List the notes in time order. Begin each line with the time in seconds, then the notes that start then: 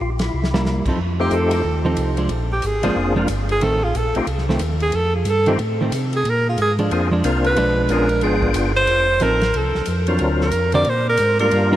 0.01 A#1 F4
0.19 E4, snare, ride
0.33 C2
0.44 snare
0.54 G3 A#3 E4, snare
0.65 snare
0.85 C2 F3 C4 D#4 A4, kick, crash
0.98 F2
1.20 A3 C4 D#4 F4 G4
1.31 F2 A4, hi-hat pedal, ride
1.51 ride
1.64 D#2
1.85 F3 C4 D#4 A4
1.97 C2, hi-hat pedal, ride
2.17 F3 G#3 D4, ride
2.29 A#1, ride
2.53 G4
2.62 G#1, hi-hat pedal, ride
2.66 G#4
2.83 G#1 F3 G#3 A#3 C4 D4 F4 G#4, ride
2.96 F1
3.16 F3 G#3 A#3 C4 D4 F4 A#4
3.28 G1, hi-hat pedal, ride
3.49 G#4, ride
3.61 A1 D#3 A3 C4 A4, ride
3.84 F4
3.95 A#1 A4, hi-hat pedal, ride
4.15 A#1 A3 C4 D#4 F4 G4, ride
4.27 C2, ride
4.38 snare
4.49 D#3 A3 C4, snare
4.59 D#2, hi-hat pedal, ride
4.80 G#4, ride
4.92 F2, ride
4.96 A4
5.16 F4
5.25 G2, hi-hat pedal, ride
5.30 A4
5.46 D#3 A3 C4 D#4 F4 G4, ride
5.59 A2, ride
5.81 D#3 A3 C4
5.92 C3, hi-hat pedal, ride
6.13 G#4, ride
6.25 A#2, ride
6.30 A#4
6.49 F4
6.58 G#2, hi-hat pedal, ride
6.62 G#4
6.79 F3 G#3 D4, ride
6.91 F2 A#3 C4 D4 F4 G#4, ride
7.11 F3 G#3 D4
7.24 C2 A#3 C4 D4 F4 A#4, hi-hat pedal, ride
7.44 B4, ride
7.56 B1 F3 G#3 D4, ride
7.89 A#1 B3 C#4 D4 F4 G#4 A#4, hi-hat pedal, ride
8.09 ride
8.21 G#1 B3 D4 F4 G#4 G5, ride
8.42 kick
8.54 G1, hi-hat pedal, ride
8.76 C5
8.87 F1, ride
9.20 A1 F3 C4 D#4 A4 A#4, hi-hat pedal, ride
9.41 snare, ride
9.54 C2 A4, ride
9.75 C2, snare
9.86 F2, hi-hat pedal, ride
10.07 F#3 C4 D4 F4 A#4, ride
10.19 D2, ride
10.41 A#4, snare
10.51 F2, hi-hat pedal, ride
10.72 D3 C4 F#4 A#4 D5, ride
10.85 A#2, ride
10.89 C5
11.09 A#4
11.17 G#2, hi-hat pedal, ride
11.39 G3 A#3 D4 F4 A#4, ride
11.51 G2, ride
11.72 G3 D4 F4 A#4